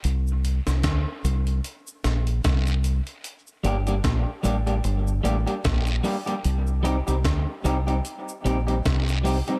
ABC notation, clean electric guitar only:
X:1
M:4/4
L:1/16
Q:"Swing 16ths" 1/4=75
K:Gm
V:1 name="Clean electric guitar"
z16 | z2 [G,B,DG] [G,B,DG] z2 [G,B,DG] [G,B,DG] z2 [G,B,DG] [G,B,DG] z2 [G,B,DG] [G,B,DG] | z2 [G,CEG] [G,CEG] z2 [G,CEG] [G,CEG] z2 [G,CEG] [G,CEG] z2 [G,CEG] [G,CEG] |]